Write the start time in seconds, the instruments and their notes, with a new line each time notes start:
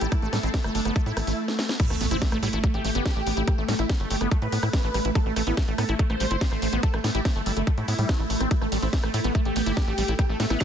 Already playing: ambient pad A3, string section E4 A4 A5
0.01 analog synth bass A1, acid bass E4, closed hi-hat
0.12 acid bass G3, supersaw synth E4, kick, cross-stick, closed hi-hat
0.22 analog synth bass A1, acid bass A3, supersaw synth A3
0.33 analog synth bass A2, acid bass G3, supersaw synth A3, cross-stick, snare, open hi-hat
0.43 analog synth bass A1, supersaw synth C4, acid bass E4, closed hi-hat
0.54 acid bass G3, supersaw synth A3, kick, snare, closed hi-hat
0.64 analog synth bass G1, supersaw synth A3, acid bass A3, cross-stick, closed hi-hat
0.75 analog synth bass G1, acid bass A3, supersaw synth D4, open hi-hat
0.85 analog synth bass G1, supersaw synth A3, acid bass B3, cross-stick, closed hi-hat
0.96 acid bass A3, supersaw synth A3, kick, closed hi-hat
1.06 analog synth bass A2, acid bass A3, supersaw synth E4, closed hi-hat
1.17 analog synth bass A1, acid bass A3, cross-stick, open hi-hat
1.27 analog synth bass A1, acid bass A3, open hi-hat
1.48 snare
1.59 snare
1.69 snare
1.80 acid bass A3, ambient pad A3, supersaw synth E4, kick, closed hi-hat, crash, impact
1.90 analog synth bass A1, supersaw synth A3, acid bass A3, cross-stick
2.01 analog synth bass A1, supersaw synth A3, acid bass B3, open hi-hat
2.11 analog synth bass A1, supersaw synth C4, acid bass E4, closed hi-hat
2.22 acid bass G3, supersaw synth A3, kick, snare, closed hi-hat
2.32 analog synth bass A1, acid bass A3, supersaw synth A3, cross-stick, closed hi-hat
2.43 analog synth bass A2, acid bass G3, supersaw synth E4, open hi-hat
2.53 analog synth bass A1, supersaw synth A3, acid bass E4, closed hi-hat
2.64 acid bass G3, supersaw synth A3, kick, cross-stick, closed hi-hat
2.74 analog synth bass A1, acid bass A3, supersaw synth G4, closed hi-hat
2.85 analog synth bass A1, acid bass A3, open hi-hat
2.95 analog synth bass G1, acid bass B3, closed hi-hat
3.06 kick, cross-stick, snare, closed hi-hat
3.16 analog synth bass A1, acid bass A3
3.27 analog synth bass A1, acid bass B3, open hi-hat
3.37 analog synth bass A1, acid bass E4, closed hi-hat
3.48 acid bass G3, supersaw synth G4, kick, cross-stick, closed hi-hat
3.58 analog synth bass A1, supersaw synth A3, acid bass A3
3.68 analog synth bass A2, acid bass G3, supersaw synth A3, snare, open hi-hat
3.79 analog synth bass A1, supersaw synth E4, acid bass E4, cross-stick, closed hi-hat
3.89 acid bass G3, supersaw synth A3, kick, snare, closed hi-hat
4.00 analog synth bass G1, supersaw synth A3, acid bass A3, closed hi-hat
4.10 analog synth bass G1, acid bass A3, supersaw synth G4, open hi-hat
4.21 analog synth bass G1, supersaw synth A3, acid bass B3, cross-stick, closed hi-hat
4.31 supersaw synth A3, acid bass A3, kick, closed hi-hat
4.42 analog synth bass A2, acid bass A3, supersaw synth B4, closed hi-hat
4.52 analog synth bass A2, acid bass B3, open hi-hat
4.63 analog synth bass A2, acid bass E4, cross-stick, open hi-hat
4.73 acid bass G3, kick, snare, closed hi-hat
4.84 analog synth bass A1, acid bass A3
4.94 analog synth bass A1, acid bass G3, cross-stick, open hi-hat
5.05 analog synth bass A1, acid bass E4, closed hi-hat
5.15 acid bass G3, supersaw synth A4, kick, closed hi-hat
5.26 analog synth bass A1, supersaw synth A3, acid bass A3
5.36 analog synth bass A1, acid bass A3, supersaw synth A3, cross-stick, open hi-hat
5.47 analog synth bass A1, acid bass B3, supersaw synth E4, closed hi-hat
5.57 acid bass A3, supersaw synth A3, kick, snare, closed hi-hat
5.68 analog synth bass A1, acid bass A3, supersaw synth A3, closed hi-hat
5.78 analog synth bass A2, acid bass B3, supersaw synth A4, cross-stick, open hi-hat
5.89 analog synth bass A1, supersaw synth A3, acid bass E4, closed hi-hat
5.99 acid bass G3, supersaw synth A3, kick, closed hi-hat
6.10 analog synth bass A1, acid bass A3, supersaw synth C5, cross-stick, closed hi-hat
6.20 analog synth bass A1, acid bass G3, open hi-hat
6.31 analog synth bass G1, acid bass E4, closed hi-hat
6.41 acid bass G3, kick, snare, closed hi-hat
6.52 analog synth bass A1, acid bass A3, cross-stick
6.62 analog synth bass A1, acid bass A3, open hi-hat
6.73 analog synth bass A1, acid bass B3, closed hi-hat
6.83 acid bass A3, supersaw synth A4, kick, closed hi-hat
6.94 analog synth bass A1, acid bass A3, supersaw synth A3, cross-stick, closed hi-hat
7.04 analog synth bass A2, supersaw synth A3, acid bass B3, snare, open hi-hat
7.15 analog synth bass A1, acid bass E4, supersaw synth G4, closed hi-hat
7.25 acid bass G3, supersaw synth A3, kick, cross-stick, snare, closed hi-hat
7.36 analog synth bass G1, acid bass A3, supersaw synth A3, closed hi-hat
7.46 analog synth bass G1, acid bass G3, supersaw synth E4, open hi-hat
7.57 analog synth bass G1, supersaw synth A3, acid bass E4, closed hi-hat
7.67 acid bass G3, supersaw synth A3, kick, cross-stick, closed hi-hat
7.78 analog synth bass A2, acid bass A3, supersaw synth E4, closed hi-hat
7.88 analog synth bass A2, acid bass B3, open hi-hat
7.99 analog synth bass A2, acid bass G3, open hi-hat
8.09 acid bass A3, kick, cross-stick, snare, closed hi-hat
8.20 analog synth bass A1, acid bass A3
8.30 analog synth bass A1, acid bass A3, open hi-hat
8.40 analog synth bass A1, acid bass C4, cross-stick, closed hi-hat
8.51 acid bass G3, supersaw synth E4, kick, closed hi-hat
8.61 analog synth bass A1, acid bass A3, supersaw synth A3, cross-stick
8.72 analog synth bass A1, acid bass G3, supersaw synth A3, open hi-hat, ride
8.82 analog synth bass A1, supersaw synth C4, acid bass E4, closed hi-hat
8.93 acid bass G3, supersaw synth A3, kick, snare, closed hi-hat
9.03 analog synth bass A1, acid bass A3, supersaw synth A3, cross-stick, closed hi-hat
9.14 analog synth bass A2, acid bass A3, supersaw synth E4, open hi-hat, ride
9.24 analog synth bass A1, supersaw synth A3, acid bass B3, closed hi-hat
9.35 acid bass A3, supersaw synth A3, kick, cross-stick, closed hi-hat
9.45 analog synth bass A1, acid bass A3, supersaw synth G4, closed hi-hat
9.56 analog synth bass A1, acid bass B3, open hi-hat, ride
9.66 analog synth bass G1, acid bass E4, closed hi-hat
9.77 acid bass G3, kick, cross-stick, snare, closed hi-hat
9.87 analog synth bass A1, acid bass A3
9.98 analog synth bass A1, acid bass G3, open hi-hat, ride
10.08 analog synth bass A1, acid bass E4, closed hi-hat
10.19 acid bass G3, supersaw synth G4, kick, cross-stick, closed hi-hat
10.29 analog synth bass A1, acid bass A3, supersaw synth A3
10.40 analog synth bass A2, acid bass A3, supersaw synth A3, snare, open hi-hat, ride
10.50 analog synth bass A1, acid bass B3, supersaw synth E4, cross-stick, closed hi-hat
10.61 supersaw synth A3, synth arpeggio sound C4, kick, snare, closed hi-hat